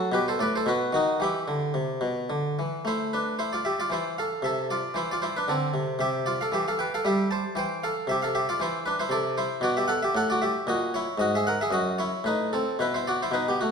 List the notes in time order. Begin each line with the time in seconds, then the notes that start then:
Already playing: F#4
0.12 B2 G4 B4
0.28 A4 C5
0.39 A2 B4 D5
0.56 A4 C5
0.66 B2 F#4 B4
0.92 D#3 D#4 F#4
1.20 E3 E4 G4
1.48 D3
1.74 C3
2.01 B2
2.30 D3
2.59 E3
2.85 A3 E4 C5
3.13 D4 B4
3.39 E4 C5
3.53 F4 D5
3.65 G4 E5
3.80 F4 D5
3.90 E3 E4 C5
4.18 A4 F5
4.42 C3 A4 E5
4.70 F4 D5
4.94 E3 E4 C5
5.11 F4 D5
5.22 E4 C5
5.37 D4 B4
5.48 D3 C4 A4
5.74 C3
5.99 C3 G4 E5
6.26 F4 D5
6.41 A4 F5
6.52 E3 G4 E5
6.68 A4 F5
6.79 B4 G5
6.94 A4 F5
7.05 G3 G4 E5
7.31 C5 A5
7.55 E3 C5 G5
7.83 A4 F5
8.07 C3 G4 E5
8.22 A4 F5
8.35 G4 E5
8.49 F4 D5
8.60 E3 E4 C5
8.86 D4 B4
9.00 E4 C5
9.09 C3 A4 D5
9.38 E4 C5
9.61 B2 F#4 D5
9.77 G4 E5
9.88 A4 F#5
10.03 G4 E5
10.15 A2 A4 F#5
10.30 F#4 D5
10.42 G4 E5
10.67 A#2 F#4 D#5
10.94 E4 C#5
11.18 G#2 F#4 D#5
11.35 G#4 E5
11.47 A#4 F#5
11.61 G#4 E5
11.71 F#2 F#4 D#5
11.98 E4 C#5
12.24 A2 D#4 B4
12.53 C4 A4
12.79 B2 E4 B4
12.94 E4 C5
13.07 F#4 D5
13.22 E4 C5
13.31 B2 D#4 B4
13.48 B3 G4
13.61 A3 F#4